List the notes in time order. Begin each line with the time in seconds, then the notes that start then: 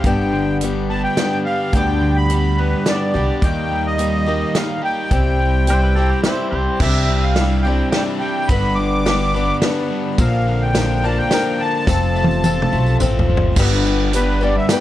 Already playing: G3 G4
0.04 G1 G2 D3 G3 B3 D4 G4 G5, kick, closed hi-hat
0.32 D3
0.61 G3 B3 D4 G4, closed hi-hat
0.90 B3 A5
1.03 G5
1.17 G3 B3 D4 G4, snare, closed hi-hat
1.45 G4 F5
1.73 D2 G2 D3 G3 B3 D4 G4 G5, kick, closed hi-hat
2.01 D3
2.16 B5
2.30 G3 B3 D4 G4, closed hi-hat
2.58 B3 B4
2.86 G3 B3 D4 G4 D5, snare, closed hi-hat
3.14 C2 G3 B3 D4 G4
3.42 D#2 D#3 G3 A#3 D#4 G4 G5, kick, closed hi-hat
3.71 G3
3.87 D#5
3.98 G3 A#3 D#4 G4, closed hi-hat
4.26 A#3 D#4 G4
4.55 G3 A#3 D#4 G4 F5, snare, closed hi-hat
4.83 G4 G5
5.11 C2 C3 G3 C4 E4 G4, kick, closed hi-hat
5.40 G3
5.67 G3 C4 E4 G4 C5, closed hi-hat
5.84 B4
5.95 C4 E4 G4 A4
6.10 G4
6.24 G3 C4 E4 G4 C5, snare, closed hi-hat
6.51 C2 G4 C5
6.80 C2 C3 G3 D4 E4 G4 E5, kick, crash
7.09 G3
7.22 F5
7.36 G3 D4, snare, ride
7.40 E4 G4
7.62 C4 G4 G5
7.67 D4 E4
7.90 G5, snare, ride
7.95 G3 D4 E4 G4
8.19 G3 G5
8.48 G1 G2 D3 G3 B3 D4 B5, kick, ride
8.52 B4
8.75 D3 D6
9.06 G3 B3 D4 B4, snare, ride
9.34 G3 B3 D4 B4
9.62 G3 B3 D4 B4, snare, ride
9.91 G3
10.18 A#1 A#2 D3 F3 A#3 D4 A#4 F5, kick, ride, tambourine
10.47 D3
10.62 G5
10.75 D3 F3 A#3 D4 A#4, snare, ride, tambourine
11.04 F3 A#3 D4 A#4 A5
11.18 G5
11.31 F3 A#3 D4 A#4, snare, ride, tambourine
11.60 D3 A5
11.87 F1 F2 F3 C4 F4 A4, kick, snare, tambourine
12.03 tambourine
12.15 C3, tambourine
12.24 high tom
12.31 tambourine
12.44 F3 C4 F4 A4, high tom, tambourine
12.62 mid tom
12.72 B1 A3, tambourine
12.86 tambourine
13.00 A1 F3 C4 F4 A4, mid tom, tambourine
13.19 floor tom
13.29 G1 F3
13.37 floor tom
13.56 G1 G2 D3 G3 B3 D4 G4 B4, kick, crash, tambourine
13.84 G3 B3 D4 G4, tambourine
14.12 G2 D3 G3 B3 D4 G4 B4, closed hi-hat, tambourine
14.17 B4
14.41 G3 B3 D4 G4 B4 D5
14.56 E5, muted overdriven electric guitar stroke
14.69 G3 B3 D4 G5, snare, closed hi-hat, tambourine
14.73 B4